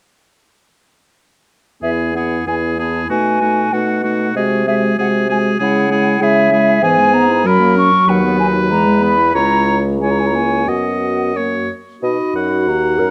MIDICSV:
0, 0, Header, 1, 6, 480
1, 0, Start_track
1, 0, Key_signature, 4, "major"
1, 0, Tempo, 650759
1, 1350, Time_signature, 2, 2, 24, 8
1, 1826, Tempo, 625000
1, 5172, Key_signature, 5, "major"
1, 7106, Tempo, 671141
1, 9026, Tempo, 638298
1, 9831, End_track
2, 0, Start_track
2, 0, Title_t, "Flute"
2, 0, Program_c, 0, 73
2, 1344, Note_on_c, 0, 76, 46
2, 1399, Note_off_c, 0, 76, 0
2, 1583, Note_on_c, 0, 78, 49
2, 1819, Note_off_c, 0, 78, 0
2, 1825, Note_on_c, 0, 80, 50
2, 1880, Note_off_c, 0, 80, 0
2, 2068, Note_on_c, 0, 81, 46
2, 2300, Note_off_c, 0, 81, 0
2, 2304, Note_on_c, 0, 80, 56
2, 2787, Note_on_c, 0, 78, 53
2, 2798, Note_off_c, 0, 80, 0
2, 3265, Note_off_c, 0, 78, 0
2, 3270, Note_on_c, 0, 75, 51
2, 3325, Note_off_c, 0, 75, 0
2, 3512, Note_on_c, 0, 76, 51
2, 3567, Note_off_c, 0, 76, 0
2, 3766, Note_on_c, 0, 78, 60
2, 3819, Note_off_c, 0, 78, 0
2, 4001, Note_on_c, 0, 80, 55
2, 4053, Note_off_c, 0, 80, 0
2, 4236, Note_on_c, 0, 78, 67
2, 4706, Note_on_c, 0, 76, 70
2, 4718, Note_off_c, 0, 78, 0
2, 5165, Note_on_c, 0, 80, 77
2, 5176, Note_off_c, 0, 76, 0
2, 5403, Note_on_c, 0, 82, 68
2, 5414, Note_off_c, 0, 80, 0
2, 5647, Note_off_c, 0, 82, 0
2, 5653, Note_on_c, 0, 83, 78
2, 5888, Note_off_c, 0, 83, 0
2, 5896, Note_on_c, 0, 85, 71
2, 6137, Note_on_c, 0, 78, 66
2, 6149, Note_off_c, 0, 85, 0
2, 6365, Note_off_c, 0, 78, 0
2, 6370, Note_on_c, 0, 80, 62
2, 6425, Note_off_c, 0, 80, 0
2, 6610, Note_on_c, 0, 82, 71
2, 6853, Note_on_c, 0, 83, 63
2, 6865, Note_off_c, 0, 82, 0
2, 7102, Note_on_c, 0, 82, 72
2, 7113, Note_off_c, 0, 83, 0
2, 7409, Note_off_c, 0, 82, 0
2, 7576, Note_on_c, 0, 80, 41
2, 7643, Note_on_c, 0, 82, 39
2, 7654, Note_off_c, 0, 80, 0
2, 7707, Note_on_c, 0, 80, 38
2, 7717, Note_off_c, 0, 82, 0
2, 7755, Note_on_c, 0, 82, 35
2, 7765, Note_off_c, 0, 80, 0
2, 7818, Note_on_c, 0, 80, 43
2, 7829, Note_off_c, 0, 82, 0
2, 8058, Note_on_c, 0, 78, 44
2, 8069, Note_off_c, 0, 80, 0
2, 8546, Note_off_c, 0, 78, 0
2, 9022, Note_on_c, 0, 83, 37
2, 9510, Note_on_c, 0, 82, 42
2, 9521, Note_off_c, 0, 83, 0
2, 9831, Note_off_c, 0, 82, 0
2, 9831, End_track
3, 0, Start_track
3, 0, Title_t, "Oboe"
3, 0, Program_c, 1, 68
3, 1344, Note_on_c, 1, 68, 35
3, 1582, Note_off_c, 1, 68, 0
3, 1597, Note_on_c, 1, 68, 31
3, 1818, Note_off_c, 1, 68, 0
3, 1822, Note_on_c, 1, 68, 33
3, 2062, Note_off_c, 1, 68, 0
3, 2068, Note_on_c, 1, 68, 33
3, 2300, Note_off_c, 1, 68, 0
3, 2305, Note_on_c, 1, 66, 36
3, 2541, Note_off_c, 1, 66, 0
3, 2546, Note_on_c, 1, 66, 35
3, 2784, Note_off_c, 1, 66, 0
3, 2790, Note_on_c, 1, 66, 37
3, 3022, Note_off_c, 1, 66, 0
3, 3027, Note_on_c, 1, 66, 34
3, 3265, Note_off_c, 1, 66, 0
3, 3276, Note_on_c, 1, 68, 40
3, 3511, Note_off_c, 1, 68, 0
3, 3516, Note_on_c, 1, 68, 35
3, 3750, Note_off_c, 1, 68, 0
3, 3755, Note_on_c, 1, 68, 42
3, 3987, Note_off_c, 1, 68, 0
3, 3992, Note_on_c, 1, 68, 40
3, 4217, Note_off_c, 1, 68, 0
3, 4221, Note_on_c, 1, 68, 45
3, 4456, Note_off_c, 1, 68, 0
3, 4463, Note_on_c, 1, 68, 45
3, 4694, Note_off_c, 1, 68, 0
3, 4700, Note_on_c, 1, 68, 47
3, 4930, Note_off_c, 1, 68, 0
3, 4936, Note_on_c, 1, 68, 45
3, 5168, Note_off_c, 1, 68, 0
3, 5172, Note_on_c, 1, 68, 52
3, 5656, Note_on_c, 1, 70, 50
3, 5667, Note_off_c, 1, 68, 0
3, 6125, Note_off_c, 1, 70, 0
3, 6129, Note_on_c, 1, 71, 54
3, 7086, Note_off_c, 1, 71, 0
3, 7105, Note_on_c, 1, 73, 47
3, 7459, Note_off_c, 1, 73, 0
3, 7580, Note_on_c, 1, 73, 38
3, 8059, Note_on_c, 1, 75, 34
3, 8070, Note_off_c, 1, 73, 0
3, 8544, Note_on_c, 1, 73, 32
3, 8555, Note_off_c, 1, 75, 0
3, 8789, Note_off_c, 1, 73, 0
3, 9025, Note_on_c, 1, 75, 38
3, 9249, Note_off_c, 1, 75, 0
3, 9267, Note_on_c, 1, 78, 46
3, 9831, Note_off_c, 1, 78, 0
3, 9831, End_track
4, 0, Start_track
4, 0, Title_t, "Clarinet"
4, 0, Program_c, 2, 71
4, 1348, Note_on_c, 2, 64, 34
4, 1584, Note_off_c, 2, 64, 0
4, 1589, Note_on_c, 2, 64, 32
4, 1819, Note_off_c, 2, 64, 0
4, 1823, Note_on_c, 2, 64, 34
4, 2062, Note_off_c, 2, 64, 0
4, 2074, Note_on_c, 2, 64, 30
4, 2305, Note_off_c, 2, 64, 0
4, 2309, Note_on_c, 2, 63, 36
4, 2546, Note_off_c, 2, 63, 0
4, 2549, Note_on_c, 2, 63, 36
4, 2785, Note_off_c, 2, 63, 0
4, 2798, Note_on_c, 2, 63, 38
4, 3024, Note_off_c, 2, 63, 0
4, 3029, Note_on_c, 2, 63, 33
4, 3267, Note_off_c, 2, 63, 0
4, 3273, Note_on_c, 2, 66, 41
4, 3512, Note_off_c, 2, 66, 0
4, 3519, Note_on_c, 2, 66, 38
4, 3751, Note_off_c, 2, 66, 0
4, 3756, Note_on_c, 2, 66, 42
4, 3990, Note_off_c, 2, 66, 0
4, 3995, Note_on_c, 2, 66, 39
4, 4226, Note_off_c, 2, 66, 0
4, 4230, Note_on_c, 2, 64, 47
4, 4460, Note_off_c, 2, 64, 0
4, 4467, Note_on_c, 2, 64, 46
4, 4691, Note_off_c, 2, 64, 0
4, 4695, Note_on_c, 2, 64, 49
4, 4925, Note_off_c, 2, 64, 0
4, 4929, Note_on_c, 2, 64, 44
4, 5159, Note_off_c, 2, 64, 0
4, 5164, Note_on_c, 2, 52, 54
4, 5285, Note_on_c, 2, 56, 47
4, 5296, Note_off_c, 2, 52, 0
4, 5405, Note_on_c, 2, 59, 52
4, 5416, Note_off_c, 2, 56, 0
4, 5521, Note_on_c, 2, 64, 47
4, 5533, Note_off_c, 2, 59, 0
4, 5640, Note_off_c, 2, 64, 0
4, 5644, Note_on_c, 2, 54, 45
4, 5760, Note_on_c, 2, 58, 50
4, 5772, Note_off_c, 2, 54, 0
4, 5890, Note_on_c, 2, 61, 45
4, 5902, Note_off_c, 2, 58, 0
4, 6005, Note_on_c, 2, 66, 43
4, 6017, Note_off_c, 2, 61, 0
4, 6120, Note_off_c, 2, 66, 0
4, 6125, Note_on_c, 2, 54, 50
4, 6248, Note_on_c, 2, 59, 46
4, 6259, Note_off_c, 2, 54, 0
4, 6367, Note_on_c, 2, 63, 50
4, 6378, Note_off_c, 2, 59, 0
4, 6486, Note_on_c, 2, 66, 45
4, 6497, Note_off_c, 2, 63, 0
4, 6604, Note_off_c, 2, 66, 0
4, 6608, Note_on_c, 2, 52, 44
4, 6733, Note_on_c, 2, 56, 46
4, 6744, Note_off_c, 2, 52, 0
4, 6848, Note_on_c, 2, 59, 43
4, 6859, Note_off_c, 2, 56, 0
4, 6971, Note_on_c, 2, 64, 41
4, 6982, Note_off_c, 2, 59, 0
4, 7094, Note_off_c, 2, 64, 0
4, 7098, Note_on_c, 2, 64, 47
4, 7439, Note_off_c, 2, 64, 0
4, 7561, Note_on_c, 2, 64, 41
4, 8046, Note_on_c, 2, 66, 33
4, 8057, Note_off_c, 2, 64, 0
4, 8528, Note_off_c, 2, 66, 0
4, 8532, Note_on_c, 2, 66, 30
4, 8778, Note_off_c, 2, 66, 0
4, 9011, Note_on_c, 2, 66, 52
4, 9739, Note_on_c, 2, 70, 57
4, 9750, Note_off_c, 2, 66, 0
4, 9831, Note_off_c, 2, 70, 0
4, 9831, End_track
5, 0, Start_track
5, 0, Title_t, "French horn"
5, 0, Program_c, 3, 60
5, 1345, Note_on_c, 3, 59, 32
5, 1580, Note_off_c, 3, 59, 0
5, 1585, Note_on_c, 3, 59, 33
5, 1814, Note_off_c, 3, 59, 0
5, 1819, Note_on_c, 3, 59, 31
5, 2055, Note_off_c, 3, 59, 0
5, 2060, Note_on_c, 3, 59, 31
5, 2297, Note_off_c, 3, 59, 0
5, 2302, Note_on_c, 3, 57, 33
5, 2542, Note_off_c, 3, 57, 0
5, 2550, Note_on_c, 3, 57, 33
5, 2780, Note_off_c, 3, 57, 0
5, 2785, Note_on_c, 3, 57, 30
5, 3022, Note_off_c, 3, 57, 0
5, 3027, Note_on_c, 3, 57, 34
5, 3261, Note_off_c, 3, 57, 0
5, 3266, Note_on_c, 3, 56, 37
5, 3505, Note_off_c, 3, 56, 0
5, 3510, Note_on_c, 3, 56, 41
5, 3748, Note_off_c, 3, 56, 0
5, 3753, Note_on_c, 3, 56, 37
5, 3985, Note_off_c, 3, 56, 0
5, 3989, Note_on_c, 3, 56, 36
5, 4219, Note_off_c, 3, 56, 0
5, 4224, Note_on_c, 3, 56, 40
5, 4449, Note_off_c, 3, 56, 0
5, 4454, Note_on_c, 3, 56, 45
5, 4685, Note_off_c, 3, 56, 0
5, 4690, Note_on_c, 3, 56, 44
5, 4926, Note_off_c, 3, 56, 0
5, 4933, Note_on_c, 3, 56, 42
5, 5167, Note_off_c, 3, 56, 0
5, 5171, Note_on_c, 3, 59, 47
5, 5644, Note_on_c, 3, 54, 50
5, 5656, Note_off_c, 3, 59, 0
5, 6615, Note_on_c, 3, 56, 45
5, 6626, Note_off_c, 3, 54, 0
5, 6974, Note_off_c, 3, 56, 0
5, 7104, Note_on_c, 3, 56, 42
5, 7547, Note_off_c, 3, 56, 0
5, 7568, Note_on_c, 3, 56, 33
5, 7807, Note_on_c, 3, 58, 30
5, 7818, Note_off_c, 3, 56, 0
5, 8051, Note_on_c, 3, 59, 31
5, 8062, Note_off_c, 3, 58, 0
5, 8536, Note_off_c, 3, 59, 0
5, 8540, Note_on_c, 3, 58, 31
5, 8782, Note_off_c, 3, 58, 0
5, 9023, Note_on_c, 3, 63, 34
5, 9831, Note_off_c, 3, 63, 0
5, 9831, End_track
6, 0, Start_track
6, 0, Title_t, "Bassoon"
6, 0, Program_c, 4, 70
6, 1347, Note_on_c, 4, 40, 39
6, 1769, Note_off_c, 4, 40, 0
6, 1824, Note_on_c, 4, 40, 37
6, 2251, Note_off_c, 4, 40, 0
6, 2311, Note_on_c, 4, 47, 43
6, 2735, Note_off_c, 4, 47, 0
6, 2790, Note_on_c, 4, 47, 39
6, 3214, Note_off_c, 4, 47, 0
6, 3270, Note_on_c, 4, 48, 49
6, 3701, Note_off_c, 4, 48, 0
6, 3754, Note_on_c, 4, 48, 47
6, 4173, Note_off_c, 4, 48, 0
6, 4230, Note_on_c, 4, 49, 51
6, 4644, Note_off_c, 4, 49, 0
6, 4695, Note_on_c, 4, 49, 51
6, 5114, Note_off_c, 4, 49, 0
6, 5164, Note_on_c, 4, 44, 59
6, 5646, Note_on_c, 4, 42, 52
6, 5658, Note_off_c, 4, 44, 0
6, 5997, Note_off_c, 4, 42, 0
6, 6127, Note_on_c, 4, 39, 52
6, 6612, Note_on_c, 4, 40, 47
6, 6624, Note_off_c, 4, 39, 0
6, 7098, Note_off_c, 4, 40, 0
6, 7103, Note_on_c, 4, 37, 54
6, 8053, Note_on_c, 4, 42, 41
6, 8064, Note_off_c, 4, 37, 0
6, 8788, Note_off_c, 4, 42, 0
6, 9019, Note_on_c, 4, 47, 39
6, 9128, Note_off_c, 4, 47, 0
6, 9261, Note_on_c, 4, 42, 38
6, 9506, Note_on_c, 4, 39, 43
6, 9518, Note_off_c, 4, 42, 0
6, 9739, Note_off_c, 4, 39, 0
6, 9744, Note_on_c, 4, 42, 39
6, 9831, Note_off_c, 4, 42, 0
6, 9831, End_track
0, 0, End_of_file